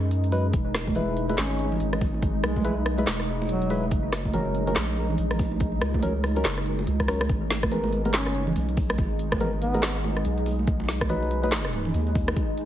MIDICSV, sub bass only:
0, 0, Header, 1, 2, 480
1, 0, Start_track
1, 0, Key_signature, 5, "minor"
1, 0, Tempo, 422535
1, 607, Time_signature, 4, 2, 24, 8
1, 14372, End_track
2, 0, Start_track
2, 0, Title_t, "Sub bass"
2, 0, Program_c, 0, 38
2, 0, Note_on_c, 0, 42, 94
2, 592, Note_off_c, 0, 42, 0
2, 609, Note_on_c, 0, 28, 93
2, 1552, Note_off_c, 0, 28, 0
2, 1568, Note_on_c, 0, 32, 90
2, 2032, Note_off_c, 0, 32, 0
2, 2049, Note_on_c, 0, 32, 101
2, 2752, Note_off_c, 0, 32, 0
2, 2768, Note_on_c, 0, 35, 102
2, 3472, Note_off_c, 0, 35, 0
2, 3488, Note_on_c, 0, 28, 95
2, 4432, Note_off_c, 0, 28, 0
2, 4448, Note_on_c, 0, 30, 92
2, 5392, Note_off_c, 0, 30, 0
2, 5409, Note_on_c, 0, 34, 93
2, 5872, Note_off_c, 0, 34, 0
2, 5888, Note_on_c, 0, 34, 104
2, 6592, Note_off_c, 0, 34, 0
2, 6607, Note_on_c, 0, 37, 98
2, 7312, Note_off_c, 0, 37, 0
2, 7330, Note_on_c, 0, 30, 96
2, 7793, Note_off_c, 0, 30, 0
2, 7810, Note_on_c, 0, 37, 105
2, 8273, Note_off_c, 0, 37, 0
2, 8287, Note_on_c, 0, 32, 94
2, 9287, Note_off_c, 0, 32, 0
2, 9287, Note_on_c, 0, 31, 94
2, 9571, Note_off_c, 0, 31, 0
2, 9571, Note_on_c, 0, 30, 94
2, 9711, Note_off_c, 0, 30, 0
2, 9728, Note_on_c, 0, 35, 105
2, 10192, Note_off_c, 0, 35, 0
2, 10207, Note_on_c, 0, 32, 91
2, 11631, Note_off_c, 0, 32, 0
2, 11648, Note_on_c, 0, 35, 98
2, 12112, Note_off_c, 0, 35, 0
2, 12126, Note_on_c, 0, 35, 89
2, 13551, Note_off_c, 0, 35, 0
2, 13568, Note_on_c, 0, 39, 97
2, 14032, Note_off_c, 0, 39, 0
2, 14372, End_track
0, 0, End_of_file